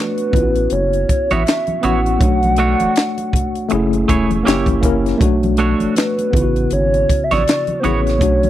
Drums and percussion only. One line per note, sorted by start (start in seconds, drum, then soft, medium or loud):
0.18 closed hi-hat soft
0.33 kick medium
0.33 closed hi-hat medium
0.33 low conga medium
0.56 closed hi-hat soft
0.70 closed hi-hat medium
0.93 closed hi-hat soft
1.09 kick medium
1.09 closed hi-hat medium
1.31 closed hi-hat soft
1.31 high conga medium
1.46 snare loud
1.46 clap medium
1.46 closed hi-hat medium
1.46 muted conga soft
1.67 closed hi-hat soft
1.67 muted conga soft
1.67 high conga medium
1.83 closed hi-hat medium
1.83 low conga medium
2.06 closed hi-hat soft
2.21 kick loud
2.21 closed hi-hat medium
2.21 muted conga soft
2.43 closed hi-hat soft
2.43 high conga medium
2.56 closed hi-hat medium
2.80 closed hi-hat soft
2.80 high conga medium
2.96 snare loud
2.96 clap medium
2.96 closed hi-hat medium
3.18 closed hi-hat medium
3.18 muted conga soft
3.33 kick medium
3.33 closed hi-hat medium
3.33 low conga medium
3.55 closed hi-hat soft
3.69 closed hi-hat medium
3.69 muted conga soft
3.93 closed hi-hat soft
3.93 muted conga soft
4.09 kick medium
4.09 closed hi-hat medium
4.31 closed hi-hat soft
4.31 high conga medium
4.46 snare loud
4.46 clap medium
4.46 closed hi-hat medium
4.46 muted conga soft
4.66 kick medium
4.66 closed hi-hat soft
4.66 high conga medium
4.83 kick medium
4.83 closed hi-hat medium
4.83 low conga medium
5.06 snare soft
5.06 closed hi-hat soft
5.21 kick loud
5.21 closed hi-hat medium
5.21 muted conga soft
5.43 closed hi-hat soft
5.43 muted conga soft
5.43 high conga medium
5.57 closed hi-hat medium
5.80 closed hi-hat soft
5.80 high conga medium
5.95 snare loud
5.95 clap medium
5.95 closed hi-hat medium
5.95 muted conga soft
6.18 closed hi-hat medium
6.18 muted conga soft
6.33 kick medium
6.33 closed hi-hat medium
6.33 low conga medium
6.56 closed hi-hat soft
6.70 closed hi-hat medium
6.70 muted conga soft
6.94 closed hi-hat soft
6.94 muted conga soft
7.09 kick medium
7.09 closed hi-hat medium
7.31 snare soft
7.31 closed hi-hat soft
7.31 high conga medium
7.48 snare loud
7.48 clap medium
7.48 closed hi-hat medium
7.67 closed hi-hat soft
7.67 muted conga soft
7.67 high conga medium
7.84 closed hi-hat medium
7.84 low conga medium
8.07 snare soft
8.07 closed hi-hat soft
8.21 kick loud
8.21 closed hi-hat medium
8.21 low conga medium
8.43 closed hi-hat soft
8.43 muted conga soft
8.43 high conga medium